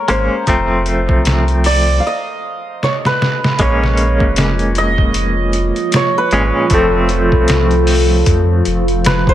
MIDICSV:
0, 0, Header, 1, 6, 480
1, 0, Start_track
1, 0, Tempo, 779221
1, 294, Time_signature, 4, 2, 24, 8
1, 5754, End_track
2, 0, Start_track
2, 0, Title_t, "Santur"
2, 0, Program_c, 0, 15
2, 0, Note_on_c, 0, 68, 76
2, 0, Note_on_c, 0, 70, 90
2, 0, Note_on_c, 0, 73, 102
2, 61, Note_on_c, 0, 72, 97
2, 98, Note_off_c, 0, 73, 0
2, 253, Note_off_c, 0, 68, 0
2, 1024, Note_on_c, 0, 74, 111
2, 1231, Note_on_c, 0, 77, 67
2, 1273, Note_on_c, 0, 75, 101
2, 1310, Note_off_c, 0, 74, 0
2, 1466, Note_off_c, 0, 70, 0
2, 1686, Note_off_c, 0, 72, 0
2, 1748, Note_on_c, 0, 73, 92
2, 1785, Note_off_c, 0, 73, 0
2, 1887, Note_on_c, 0, 71, 92
2, 2224, Note_on_c, 0, 73, 85
2, 2598, Note_off_c, 0, 77, 0
2, 2738, Note_off_c, 0, 75, 0
2, 2945, Note_on_c, 0, 75, 109
2, 3570, Note_off_c, 0, 71, 0
2, 3668, Note_off_c, 0, 73, 0
2, 3671, Note_on_c, 0, 73, 96
2, 3806, Note_on_c, 0, 71, 93
2, 4149, Note_on_c, 0, 69, 70
2, 4410, Note_off_c, 0, 75, 0
2, 5241, Note_off_c, 0, 73, 0
2, 5489, Note_off_c, 0, 71, 0
2, 5582, Note_on_c, 0, 71, 100
2, 5722, Note_on_c, 0, 72, 107
2, 5754, Note_off_c, 0, 69, 0
2, 5754, Note_off_c, 0, 71, 0
2, 5754, Note_off_c, 0, 72, 0
2, 5754, End_track
3, 0, Start_track
3, 0, Title_t, "Ambient pad"
3, 0, Program_c, 1, 92
3, 2221, Note_on_c, 1, 53, 82
3, 2223, Note_on_c, 1, 65, 87
3, 5754, Note_off_c, 1, 53, 0
3, 5754, Note_off_c, 1, 65, 0
3, 5754, End_track
4, 0, Start_track
4, 0, Title_t, "Clean electric guitar"
4, 0, Program_c, 2, 27
4, 52, Note_on_c, 2, 56, 85
4, 56, Note_on_c, 2, 58, 78
4, 60, Note_on_c, 2, 61, 93
4, 268, Note_off_c, 2, 56, 0
4, 271, Note_off_c, 2, 58, 0
4, 273, Note_off_c, 2, 61, 0
4, 290, Note_on_c, 2, 53, 85
4, 296, Note_on_c, 2, 57, 77
4, 304, Note_on_c, 2, 60, 96
4, 1240, Note_off_c, 2, 53, 0
4, 1243, Note_off_c, 2, 57, 0
4, 1247, Note_off_c, 2, 60, 0
4, 2215, Note_on_c, 2, 56, 79
4, 2223, Note_on_c, 2, 58, 82
4, 2231, Note_on_c, 2, 61, 99
4, 3870, Note_off_c, 2, 56, 0
4, 3874, Note_off_c, 2, 58, 0
4, 3878, Note_off_c, 2, 61, 0
4, 3897, Note_on_c, 2, 56, 85
4, 3900, Note_on_c, 2, 46, 79
4, 3904, Note_on_c, 2, 61, 101
4, 4111, Note_off_c, 2, 56, 0
4, 4113, Note_off_c, 2, 46, 0
4, 4115, Note_off_c, 2, 61, 0
4, 4133, Note_on_c, 2, 53, 88
4, 4140, Note_on_c, 2, 57, 77
4, 4151, Note_on_c, 2, 60, 96
4, 5754, Note_off_c, 2, 53, 0
4, 5754, Note_off_c, 2, 57, 0
4, 5754, Note_off_c, 2, 60, 0
4, 5754, End_track
5, 0, Start_track
5, 0, Title_t, "Sub bass"
5, 0, Program_c, 3, 38
5, 57, Note_on_c, 3, 32, 93
5, 178, Note_off_c, 3, 32, 0
5, 292, Note_on_c, 3, 29, 98
5, 672, Note_on_c, 3, 36, 84
5, 681, Note_off_c, 3, 29, 0
5, 1234, Note_off_c, 3, 36, 0
5, 2212, Note_on_c, 3, 34, 104
5, 2591, Note_on_c, 3, 29, 77
5, 2600, Note_off_c, 3, 34, 0
5, 3525, Note_off_c, 3, 29, 0
5, 3894, Note_on_c, 3, 32, 96
5, 4016, Note_off_c, 3, 32, 0
5, 4133, Note_on_c, 3, 29, 104
5, 4510, Note_on_c, 3, 36, 75
5, 4520, Note_off_c, 3, 29, 0
5, 5073, Note_off_c, 3, 36, 0
5, 5094, Note_on_c, 3, 41, 81
5, 5309, Note_off_c, 3, 41, 0
5, 5339, Note_on_c, 3, 29, 82
5, 5754, Note_off_c, 3, 29, 0
5, 5754, End_track
6, 0, Start_track
6, 0, Title_t, "Drums"
6, 51, Note_on_c, 9, 42, 62
6, 113, Note_off_c, 9, 42, 0
6, 289, Note_on_c, 9, 42, 77
6, 291, Note_on_c, 9, 36, 95
6, 351, Note_off_c, 9, 42, 0
6, 352, Note_off_c, 9, 36, 0
6, 529, Note_on_c, 9, 42, 62
6, 590, Note_off_c, 9, 42, 0
6, 671, Note_on_c, 9, 36, 94
6, 732, Note_off_c, 9, 36, 0
6, 772, Note_on_c, 9, 42, 87
6, 783, Note_on_c, 9, 38, 114
6, 833, Note_off_c, 9, 42, 0
6, 844, Note_off_c, 9, 38, 0
6, 912, Note_on_c, 9, 42, 39
6, 974, Note_off_c, 9, 42, 0
6, 1011, Note_on_c, 9, 46, 85
6, 1073, Note_off_c, 9, 46, 0
6, 1743, Note_on_c, 9, 38, 57
6, 1804, Note_off_c, 9, 38, 0
6, 1880, Note_on_c, 9, 38, 62
6, 1942, Note_off_c, 9, 38, 0
6, 1983, Note_on_c, 9, 38, 78
6, 2045, Note_off_c, 9, 38, 0
6, 2122, Note_on_c, 9, 38, 83
6, 2183, Note_off_c, 9, 38, 0
6, 2210, Note_on_c, 9, 42, 84
6, 2212, Note_on_c, 9, 36, 113
6, 2271, Note_off_c, 9, 42, 0
6, 2273, Note_off_c, 9, 36, 0
6, 2362, Note_on_c, 9, 38, 47
6, 2424, Note_off_c, 9, 38, 0
6, 2448, Note_on_c, 9, 42, 67
6, 2510, Note_off_c, 9, 42, 0
6, 2590, Note_on_c, 9, 36, 92
6, 2651, Note_off_c, 9, 36, 0
6, 2688, Note_on_c, 9, 42, 95
6, 2699, Note_on_c, 9, 38, 118
6, 2749, Note_off_c, 9, 42, 0
6, 2760, Note_off_c, 9, 38, 0
6, 2829, Note_on_c, 9, 42, 41
6, 2890, Note_off_c, 9, 42, 0
6, 2927, Note_on_c, 9, 42, 69
6, 2989, Note_off_c, 9, 42, 0
6, 3069, Note_on_c, 9, 36, 83
6, 3130, Note_off_c, 9, 36, 0
6, 3168, Note_on_c, 9, 42, 88
6, 3229, Note_off_c, 9, 42, 0
6, 3408, Note_on_c, 9, 42, 70
6, 3469, Note_off_c, 9, 42, 0
6, 3549, Note_on_c, 9, 42, 41
6, 3610, Note_off_c, 9, 42, 0
6, 3647, Note_on_c, 9, 42, 86
6, 3658, Note_on_c, 9, 38, 105
6, 3709, Note_off_c, 9, 42, 0
6, 3720, Note_off_c, 9, 38, 0
6, 3888, Note_on_c, 9, 42, 60
6, 3949, Note_off_c, 9, 42, 0
6, 4126, Note_on_c, 9, 42, 84
6, 4131, Note_on_c, 9, 36, 111
6, 4188, Note_off_c, 9, 42, 0
6, 4192, Note_off_c, 9, 36, 0
6, 4367, Note_on_c, 9, 42, 69
6, 4428, Note_off_c, 9, 42, 0
6, 4509, Note_on_c, 9, 36, 91
6, 4571, Note_off_c, 9, 36, 0
6, 4607, Note_on_c, 9, 42, 91
6, 4618, Note_on_c, 9, 38, 120
6, 4668, Note_off_c, 9, 42, 0
6, 4679, Note_off_c, 9, 38, 0
6, 4748, Note_on_c, 9, 42, 45
6, 4810, Note_off_c, 9, 42, 0
6, 4848, Note_on_c, 9, 46, 85
6, 4909, Note_off_c, 9, 46, 0
6, 5090, Note_on_c, 9, 42, 87
6, 5091, Note_on_c, 9, 36, 105
6, 5151, Note_off_c, 9, 42, 0
6, 5153, Note_off_c, 9, 36, 0
6, 5331, Note_on_c, 9, 42, 73
6, 5392, Note_off_c, 9, 42, 0
6, 5472, Note_on_c, 9, 42, 41
6, 5533, Note_off_c, 9, 42, 0
6, 5572, Note_on_c, 9, 42, 81
6, 5583, Note_on_c, 9, 38, 120
6, 5633, Note_off_c, 9, 42, 0
6, 5645, Note_off_c, 9, 38, 0
6, 5711, Note_on_c, 9, 36, 100
6, 5754, Note_off_c, 9, 36, 0
6, 5754, End_track
0, 0, End_of_file